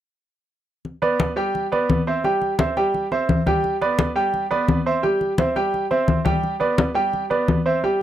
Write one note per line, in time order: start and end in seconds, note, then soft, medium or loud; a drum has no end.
0.85 high conga soft
1.02 1.31 B3 medium
1.02 1.30 B4 medium
1.02 1.31 D5 medium
1.02 high conga soft
1.20 high conga medium
1.36 1.65 G3 medium
1.36 1.65 G4 medium
1.36 1.65 G5 medium
1.55 high conga soft
1.72 2.00 B3 medium
1.72 2.01 B4 medium
1.72 2.01 D5 medium
1.72 high conga soft
1.90 high conga medium
2.07 2.21 C4 medium
2.07 2.21 C5 medium
2.07 2.22 E5 medium
2.24 2.53 G3 medium
2.24 2.53 G4 medium
2.24 2.53 G5 medium
2.24 high conga soft
2.42 high conga soft
2.58 2.73 C4 medium
2.58 2.73 C5 medium
2.58 2.73 E5 medium
2.58 high conga medium
2.77 3.05 G3 medium
2.77 3.05 G4 medium
2.77 3.05 G5 medium
2.77 high conga soft
2.94 high conga soft
3.12 3.40 C4 medium
3.12 3.40 C5 medium
3.12 3.40 E5 medium
3.12 high conga soft
3.29 high conga medium
3.46 3.75 G3 medium
3.46 3.75 G4 medium
3.46 3.75 G5 medium
3.46 high conga medium
3.64 high conga soft
3.81 4.10 B3 medium
3.81 4.10 B4 medium
3.81 4.10 D5 medium
3.81 high conga soft
3.99 high conga medium
4.16 4.44 G3 medium
4.16 4.44 G4 medium
4.16 4.45 G5 medium
4.34 high conga soft
4.51 4.80 B3 medium
4.51 4.80 B4 medium
4.51 4.80 D5 medium
4.51 high conga soft
4.68 high conga medium
4.86 5.00 C4 medium
4.86 5.01 C5 medium
4.86 5.01 E5 medium
5.03 5.32 G3 medium
5.03 5.32 G4 medium
5.03 5.32 G5 medium
5.03 high conga soft
5.21 high conga soft
5.38 5.53 C4 medium
5.38 5.53 C5 medium
5.38 5.53 E5 medium
5.38 high conga medium
5.56 5.85 G3 medium
5.56 5.85 G4 medium
5.56 5.85 G5 medium
5.56 high conga soft
5.74 high conga soft
5.91 6.19 C4 medium
5.91 6.19 C5 medium
5.91 6.20 E5 medium
5.91 high conga soft
6.08 high conga medium
6.25 6.54 G3 medium
6.25 6.54 G4 medium
6.25 6.54 G5 medium
6.25 high conga medium
6.44 high conga soft
6.60 6.89 B3 medium
6.60 6.89 B4 medium
6.60 6.89 D5 medium
6.60 high conga soft
6.78 high conga medium
6.94 7.24 G3 medium
6.94 7.24 G4 medium
6.94 7.24 G5 medium
7.13 high conga soft
7.30 7.59 B3 medium
7.30 7.59 B4 medium
7.30 7.59 D5 medium
7.30 high conga soft
7.48 high conga medium
7.66 7.80 C4 medium
7.66 7.80 C5 medium
7.66 7.80 E5 medium
7.83 8.02 G3 medium
7.83 8.02 G4 medium
7.83 8.02 G5 medium
7.83 high conga soft